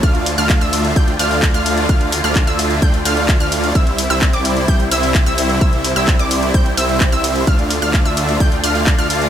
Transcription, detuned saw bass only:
X:1
M:4/4
L:1/16
Q:1/4=129
K:Dm
V:1 name="Detuned saw bass" clef=bass
D,,3 D,,2 D,,3 D,,2 D,,3 D,,3 | D,,3 D,,2 D,,3 D,,2 D,,3 D,,3 | C,,3 C,,2 C,,3 C,,2 C,,3 C,,3 | C,,3 C,,2 C,,3 C,,2 C,,3 C,,3 |
D,,3 D,,2 D,,3 D,,2 D,,3 D,,3 |]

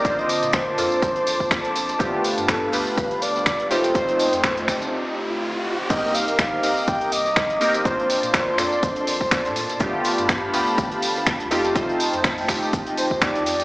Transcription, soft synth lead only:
X:1
M:4/4
L:1/16
Q:"Swing 16ths" 1/4=123
K:Cdor
V:1 name="Soft synth lead"
d e3 c8- c2 z2 | z4 A2 =B4 d4 c2- | c8 z8 | e2 f6 g2 e6 |
c6 d2 c6 z2 | z16 | z8 z2 c2 d4 |]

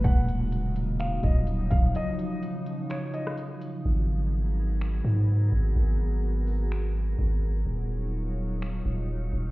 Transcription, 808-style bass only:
X:1
M:4/4
L:1/8
Q:1/4=126
K:G#dor
V:1 name="808-style bass" clef=bass
D,,,4- D,,, D,,,2 D,,, | z8 | G,,,4- G,,, G,,2 G,,, | G,,,6 G,,,2 |
D,,,4- D,,, D,,,2 D,,, |]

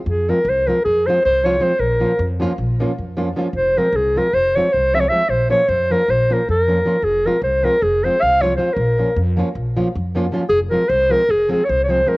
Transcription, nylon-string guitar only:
X:1
M:9/8
L:1/8
Q:3/8=103
K:Fm
V:1 name="Nylon-string guitar"
z [F,A,CF] z [F,A,CF] z [F,A,CF] z [F,A,CF] [F,A,CF] | z [F,B,DF] z [F,B,DF] z [F,B,DF] z [F,B,DF] [F,B,DF] | z [F,A,CF] z [F,A,CF] z [F,A,CF] z [F,A,CF] [F,A,CF] | z [F,B,DF] z [F,B,DF] z [F,B,DF] z [F,B,DF] [F,B,DF] |
z [F,A,CF] z [F,A,CF] z [F,A,CF] z [F,A,CF] [F,A,CF] | z [F,B,DF] z [F,B,DF] z [F,B,DF] z [F,B,DF] [F,B,DF] | z [F,A,CF] z [F,A,CF] z [F,A,CF] z [F,A,CF] [F,A,CF] |]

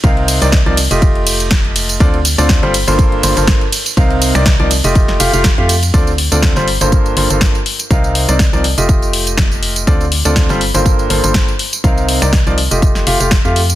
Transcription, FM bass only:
X:1
M:4/4
L:1/16
Q:"Swing 16ths" 1/4=122
K:Gm
V:1 name="FM bass" clef=bass
C,,3 C,,2 C,,2 F,,,8- F,,, | D,,3 D,,2 G,,,2 G,,,3 G,,, G,,,2 z3 | C,,3 C,,2 C,,2 F,,,3 F,,, F,,,2 F,,3 | D,,3 D,,2 G,,,2 G,,,3 G,,, G,,,2 z3 |
C,,3 C,,2 C,,2 F,,,8- F,,, | D,,3 D,,2 G,,,2 G,,,3 G,,, G,,,2 z3 | C,,3 C,,2 C,,2 F,,,3 F,,, F,,,2 F,,3 |]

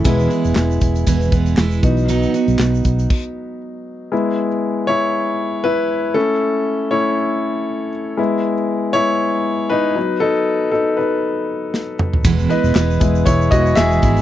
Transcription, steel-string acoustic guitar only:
X:1
M:4/4
L:1/8
Q:"Swing 16ths" 1/4=118
K:E
V:1 name="Steel-string acoustic guitar"
[E,,B,,E,G,B,E] [E,G,B,E]3 [E,,B,,E,G,B,E] [E,G,B,E] [E,G,B,E] [B,DF] | [B,,F,B,DF] [B,DF]3 z4 | z8 | z8 |
z8 | z8 | [E,,B,,E,G,B,E] [E,G,B,E] [E,G,B,E]3 [E,G,B,E] [E,G,B,E] [E,G,B,E] |]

